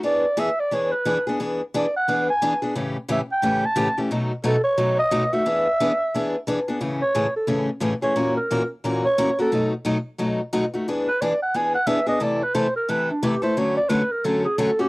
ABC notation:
X:1
M:4/4
L:1/16
Q:"Swing" 1/4=177
K:A
V:1 name="Clarinet"
d4 e2 d2 c2 B4 z2 | z4 d2 f4 g4 z2 | z4 e2 =g4 a4 z2 | z4 A2 c4 ^d4 e2- |
e12 z4 | z2 c4 A4 z4 c2- | c2 ^A4 z4 c4 =A2- | A2 z12 z2 |
z2 B2 d2 f2 g2 f2 e2 ^d2 | d2 B2 =c2 _B2 =B2 D2 =G2 c2 | c2 d2 B2 _B2 A2 G2 A2 =G2 |]
V:2 name="Steel-string acoustic guitar"
[E,B,DG]2 z2 [E,B,DG] z3 [E,B,DG]2 z2 [E,B,DG] z [B,DG]2 | [E,B,DG]2 z2 [E,B,DG] z3 [E,B,DG]2 z2 [E,B,DG] z [B,DG]2 | [A,,C,E,A,C=G]2 z2 [A,,C,E,A,CG] z3 [A,,C,E,A,CG]2 z2 [A,,C,E,A,CG] z [E,A,CG]2 | [B,,F,A,^DF]2 z2 [B,,F,A,DF] z3 [B,,F,A,DF]2 z2 [B,,F,A,DF] z [A,DF]2 |
[E,B,DG]2 z2 [E,B,DG] z3 [E,B,DG]2 z2 [E,B,DG] z [B,DG]2 | [A,,C,E,A,CG]2 z2 [A,,C,E,A,CG] z3 [A,,C,E,A,CG]2 z2 [A,,C,E,A,CG] z [E,A,CG]2 | [^A,,E,^A,CF^A]2 z2 [A,,E,A,CFA] z3 [A,,E,A,CFA]2 z2 [A,,E,A,CFA] z [A,CFA]2 | [B,,F,A,^DF]2 z2 [B,,F,A,DF] z3 [B,,F,A,DF]2 z2 [B,,F,A,DF] z [A,DF]2 |
[E,B,DG]2 z2 [E,B,DG] z3 [E,B,DG]2 z2 [E,B,DG] z [B,DG]2 | [=C,E,A,EA]2 z2 [C,E,A,EA] z3 [C,E,A,EA]2 z2 [C,E,A,EA] z [A,EA]2 | [D,F,A,CF]2 z2 [D,F,A,CF] z3 [D,F,A,CF]2 z2 [D,F,A,CF] z [A,CF]2 |]